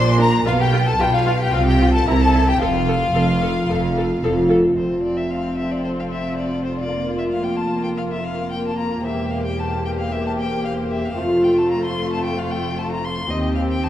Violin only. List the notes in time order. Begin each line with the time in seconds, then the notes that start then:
Already playing: C5
0.19 A#4
0.46 F4
0.60 G4
0.86 A4
1.00 G4
1.13 F4
1.39 G4
1.52 F4
1.66 G4
1.93 A4
2.08 A#4
2.21 A4
2.48 G4
2.62 F4
4.77 C5
5.03 D5
5.17 E5
5.30 F5
5.57 E5
5.71 D5
5.84 C5
6.00 F5
6.12 E5
6.37 D5
6.65 C5
6.79 D5
7.18 E5
7.32 F5
7.44 G5
7.57 A5
7.83 G5
7.97 F5
8.12 E5
8.24 F5
8.52 G5
8.67 A5
8.78 A#5
9.06 E5
9.31 F5
9.45 G5
9.59 A5
9.85 G5
9.99 F5
10.12 E5
10.27 A5
10.40 G5
10.65 F5
10.91 E5
11.06 F5
11.44 G5
11.58 A5
11.71 A#5
11.85 C6
12.13 A5
12.24 G5
12.39 F5
12.51 G5
12.78 A5
12.92 A#5
13.05 C6
13.30 D#5
13.55 F5
13.70 G5
13.84 A5